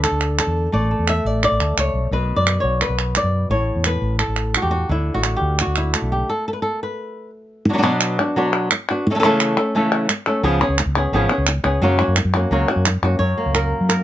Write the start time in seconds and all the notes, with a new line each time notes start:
Already playing: D3 A3 D4
0.04 A4, clap
0.11 D2
0.21 clap
0.39 A4, clap
0.47 E2
0.72 A1 A3 D5
0.91 A4
0.99 E2
1.08 E5, clap
1.25 A1 D5
1.43 D5, clap
1.52 A1
1.60 D2 A4, clap
1.77 C#2 C#5, clap
1.94 B1
2.11 B1 B2 B4
2.36 F#2 D5
2.47 B4, clap
2.60 B1 F#4 C#5
2.81 B4, clap
2.89 B1
2.99 clap
3.15 D5, clap
3.23 F#2
3.50 A1 A2 C#5
3.76 E2
3.84 B4, clap
4.02 A1
4.19 A4, clap
4.28 A1
4.36 clap
4.55 F#4, clap
4.62 E2 G4
4.71 F#4
4.89 D2 D3 E4
5.14 A1 F#4
5.24 E4, clap
5.37 G4
5.41 D2
5.59 F#4, clap
5.67 D2
5.76 E4, clap
5.93 A3, clap
6.02 B1
6.12 G4
6.29 A4
6.48 A4
6.53 B4
6.62 A4
6.83 B4
7.65 F#3, muted nylon-string guitar stroke
7.70 F#3 B3 D4 F#4
7.75 F#3 D4 F#4
7.79 B2 F#3 B3 D4 F#4
7.83 B3 D4 F#4
8.01 clap
8.19 B3 D4 F#4
8.36 B2 F#3 B3 D4 F#4
8.71 muted nylon-string guitar stroke, clap
8.90 B3 D4 F#4
9.07 E3, muted nylon-string guitar stroke
9.11 E3 A3 C#4 A4
9.15 A3 C#4 A4
9.20 E3 A3 C#4 A4
9.24 C#3 E3 A3 C#4 A4
9.40 clap
9.58 A3 C#4 A4
9.75 C#3 E3 A3 C#4 A4
10.09 muted nylon-string guitar stroke, clap
10.27 A3 C#4 A4
10.43 C#2 C#3 F3 B3 C#4 G#4
10.61 B3 C#4 G#4
10.69 C#2
10.78 muted nylon-string guitar stroke, clap
10.86 C#2
10.97 B3 C#4 G#4
11.12 G#1 C#3 F3 B3 C#4 G#4
11.30 B3 C#4 G#4
11.38 C#2
11.47 muted nylon-string guitar stroke, clap
11.64 C#2 B3 C#4 G#4
11.81 F#2 C#3 F#3 A#3 C#4 F#4
11.99 A#3 C#4 F#4
12.08 F#2
12.16 muted nylon-string guitar stroke, clap
12.25 F#2
12.35 A#3 C#4 F#4
12.51 C#2 C#3 F#3 A#3 C#4 F#4
12.69 A#3 C#4 F#4
12.76 F#2
12.85 muted nylon-string guitar stroke, clap
13.02 F#2 A#3 C#4 F#4
13.19 F#2 C#5
13.38 A#3
13.46 C#2
13.55 A#4, clap
13.81 F#3
13.89 A#4, clap